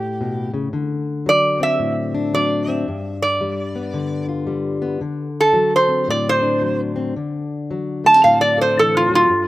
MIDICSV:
0, 0, Header, 1, 3, 480
1, 0, Start_track
1, 0, Tempo, 535714
1, 663, Time_signature, 4, 2, 24, 8
1, 8491, End_track
2, 0, Start_track
2, 0, Title_t, "Resonator guitar played with a steel bar"
2, 0, Program_c, 0, 25
2, 0, Note_on_c, 0, 67, 73
2, 454, Note_off_c, 0, 67, 0
2, 1155, Note_on_c, 0, 74, 102
2, 1441, Note_off_c, 0, 74, 0
2, 1460, Note_on_c, 0, 76, 81
2, 2089, Note_off_c, 0, 76, 0
2, 2101, Note_on_c, 0, 74, 87
2, 2409, Note_off_c, 0, 74, 0
2, 2409, Note_on_c, 0, 76, 76
2, 2870, Note_off_c, 0, 76, 0
2, 2889, Note_on_c, 0, 74, 93
2, 3813, Note_off_c, 0, 74, 0
2, 4843, Note_on_c, 0, 69, 98
2, 5139, Note_off_c, 0, 69, 0
2, 5159, Note_on_c, 0, 72, 90
2, 5457, Note_off_c, 0, 72, 0
2, 5469, Note_on_c, 0, 74, 86
2, 5617, Note_off_c, 0, 74, 0
2, 5639, Note_on_c, 0, 72, 103
2, 6092, Note_off_c, 0, 72, 0
2, 7224, Note_on_c, 0, 81, 97
2, 7375, Note_off_c, 0, 81, 0
2, 7382, Note_on_c, 0, 77, 80
2, 7534, Note_off_c, 0, 77, 0
2, 7536, Note_on_c, 0, 74, 81
2, 7692, Note_off_c, 0, 74, 0
2, 7718, Note_on_c, 0, 72, 83
2, 7863, Note_off_c, 0, 72, 0
2, 7879, Note_on_c, 0, 69, 91
2, 8024, Note_off_c, 0, 69, 0
2, 8035, Note_on_c, 0, 65, 83
2, 8183, Note_off_c, 0, 65, 0
2, 8201, Note_on_c, 0, 65, 98
2, 8491, Note_off_c, 0, 65, 0
2, 8491, End_track
3, 0, Start_track
3, 0, Title_t, "Steel-string acoustic guitar"
3, 0, Program_c, 1, 25
3, 0, Note_on_c, 1, 45, 68
3, 185, Note_on_c, 1, 47, 56
3, 477, Note_off_c, 1, 47, 0
3, 480, Note_on_c, 1, 49, 61
3, 641, Note_off_c, 1, 45, 0
3, 651, Note_off_c, 1, 49, 0
3, 654, Note_on_c, 1, 50, 73
3, 1130, Note_on_c, 1, 54, 65
3, 1434, Note_on_c, 1, 60, 49
3, 1606, Note_on_c, 1, 45, 62
3, 1922, Note_on_c, 1, 62, 60
3, 2081, Note_off_c, 1, 54, 0
3, 2092, Note_on_c, 1, 54, 63
3, 2393, Note_off_c, 1, 60, 0
3, 2404, Note_on_c, 1, 60, 55
3, 2550, Note_off_c, 1, 45, 0
3, 2553, Note_off_c, 1, 50, 0
3, 2554, Note_off_c, 1, 54, 0
3, 2559, Note_off_c, 1, 60, 0
3, 2580, Note_on_c, 1, 43, 75
3, 3055, Note_on_c, 1, 55, 62
3, 3365, Note_on_c, 1, 59, 49
3, 3527, Note_on_c, 1, 50, 64
3, 3836, Note_off_c, 1, 62, 0
3, 3840, Note_on_c, 1, 65, 60
3, 3992, Note_off_c, 1, 55, 0
3, 4003, Note_on_c, 1, 55, 64
3, 4307, Note_off_c, 1, 59, 0
3, 4317, Note_on_c, 1, 59, 61
3, 4467, Note_off_c, 1, 55, 0
3, 4469, Note_off_c, 1, 50, 0
3, 4474, Note_off_c, 1, 43, 0
3, 4474, Note_off_c, 1, 59, 0
3, 4475, Note_off_c, 1, 65, 0
3, 4489, Note_on_c, 1, 50, 78
3, 4958, Note_on_c, 1, 54, 65
3, 5274, Note_on_c, 1, 60, 50
3, 5447, Note_on_c, 1, 45, 61
3, 5755, Note_on_c, 1, 62, 58
3, 5916, Note_off_c, 1, 54, 0
3, 5927, Note_on_c, 1, 54, 62
3, 6224, Note_off_c, 1, 60, 0
3, 6234, Note_on_c, 1, 60, 58
3, 6389, Note_off_c, 1, 45, 0
3, 6389, Note_off_c, 1, 54, 0
3, 6390, Note_off_c, 1, 50, 0
3, 6392, Note_off_c, 1, 60, 0
3, 6419, Note_on_c, 1, 50, 74
3, 6904, Note_on_c, 1, 54, 67
3, 7206, Note_on_c, 1, 57, 51
3, 7296, Note_off_c, 1, 57, 0
3, 7296, Note_on_c, 1, 60, 50
3, 7322, Note_off_c, 1, 62, 0
3, 7382, Note_on_c, 1, 45, 63
3, 7687, Note_on_c, 1, 69, 65
3, 7856, Note_off_c, 1, 54, 0
3, 7860, Note_on_c, 1, 52, 59
3, 8149, Note_off_c, 1, 52, 0
3, 8152, Note_on_c, 1, 54, 62
3, 8320, Note_off_c, 1, 50, 0
3, 8321, Note_off_c, 1, 45, 0
3, 8322, Note_off_c, 1, 69, 0
3, 8330, Note_on_c, 1, 43, 68
3, 8335, Note_off_c, 1, 54, 0
3, 8344, Note_off_c, 1, 60, 0
3, 8491, Note_off_c, 1, 43, 0
3, 8491, End_track
0, 0, End_of_file